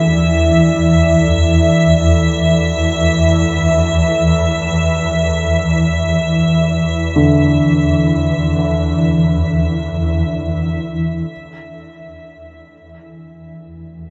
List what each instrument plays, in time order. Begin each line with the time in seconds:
Already playing: synth drone E2 E3, grand piano F#2, ambient pad E4 A4 D5 E5 F#5
7.16 grand piano D3
11.29 ambient pad E4
11.34 synth drone E2 E3
11.87 ambient pad A4
13.43 ambient pad F#5